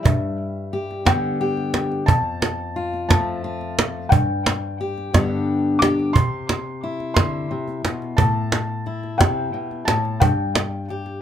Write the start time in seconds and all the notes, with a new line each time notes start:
Already playing: G3
0.03 G2 E5, cajon bass
0.73 G4, cajon slap
0.91 cajon slap
1.05 D3 B3 G5, cajon bass, cajon slap
1.41 G4
1.57 cajon slap
1.74 cajon slap
1.92 cajon slap
2.06 F2 A5, cajon bass
2.42 cajon slap
2.76 F4, cajon slap
2.93 cajon slap
3.09 F3 A3 A5, cajon bass, cajon slap
3.44 F4
3.61 cajon slap
3.79 cajon slap
4.09 G2 G5, cajon bass
4.46 cajon slap
4.81 G4
4.98 cajon slap
5.13 G2 D3 B3 D4 G4, cajon bass, cajon slap
5.79 G4 D6, cajon slap
5.99 cajon slap
6.13 C3 C6, cajon bass
6.49 cajon slap
6.83 E4, cajon slap
7.00 cajon slap
7.14 D3 C6, cajon bass, cajon slap
7.51 C3
7.68 cajon slap
7.85 B2, cajon slap
8.02 cajon slap
8.17 A2 A5, cajon bass
8.52 cajon slap
8.86 E4, cajon slap
9.03 cajon slap
9.18 C3 G5, cajon bass, cajon slap
9.54 B2
9.71 cajon slap
9.85 A2 A5, cajon slap
10.05 cajon slap
10.20 G2 G5, cajon bass
10.55 cajon slap
10.89 G4, cajon slap
11.06 cajon slap